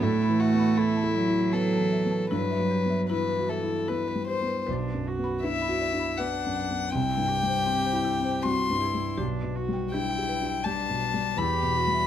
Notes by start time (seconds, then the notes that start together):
0.02 A2 A3 E4 A4
0.22 B5
0.29 E3
0.40 F#4 E5
0.54 B3
0.59 B5
0.77 E4 A4
0.97 A5
1.03 A4
1.16 F#3 B5
1.28 E4
1.52 B3 A4
1.73 A5
1.79 E3
1.92 E5
2.06 B3
2.11 A5
2.31 G2 F#3 E4 B4
2.51 E5
2.59 F#3
2.71 G4
2.86 B3
2.90 E5
3.09 E3 E4 B4
3.29 B4
3.39 F#4
3.49 A4 E5
3.63 E4
3.88 B3 E4 B4
4.08 B4
4.16 G3
4.28 G4 C5
4.42 B3
4.47 B4
4.67 B1 D4 B4
4.94 F#2
5.07 F#4
5.19 B3
5.24 B5
5.43 D4 E4 B4 E5
5.62 B5
5.69 F#4
5.81 D5
5.93 D4
6.00 B5
6.18 B3 D4 B4 F#5
6.46 F#2
6.56 F#5
6.71 B3
6.90 C4 E4 G5
6.95 C2
7.17 G2
7.29 G4
7.43 G3
7.48 C5
7.66 C4
7.85 C5
7.93 E4
8.05 E4
8.20 C4
8.24 C5
8.42 G3 C4 F#4 C6
8.70 G2
8.80 E4 G4
8.94 G3
9.17 B1 D4 G4
9.43 B2
9.56 F#4
9.69 G3
9.73 G5
9.92 D4 E4 G4 G5
10.10 G5
10.18 G4
10.29 B4
10.42 D4
10.46 G5
10.64 G3 D4 G4 A5
10.89 B2
11.02 D5
11.14 G3
11.37 E2 E4 G4 B5
11.63 B2
11.78 F#4
11.87 G3
11.94 E5